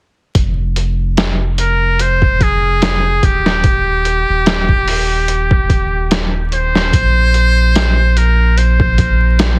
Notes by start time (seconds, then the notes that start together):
0.35 F1, kick, closed hi-hat
0.76 closed hi-hat
1.17 snare, closed hi-hat
1.58 A#4, closed hi-hat
1.99 C5, closed hi-hat
2.22 kick
2.41 G#4, kick, closed hi-hat
2.82 snare, closed hi-hat
3.23 D#1 G4, kick, closed hi-hat
3.46 snare
3.64 kick, closed hi-hat
4.05 closed hi-hat
4.29 D#1
4.46 snare, closed hi-hat
4.69 kick
4.88 open hi-hat
5.28 closed hi-hat
5.51 kick
5.70 kick, closed hi-hat
6.11 snare, closed hi-hat
6.52 C5, closed hi-hat
6.75 snare
6.93 A#1, kick, closed hi-hat
7.34 closed hi-hat
7.75 snare, closed hi-hat
8.17 A#4, closed hi-hat
8.58 C5, closed hi-hat
8.80 kick
8.98 kick, closed hi-hat
9.39 snare, closed hi-hat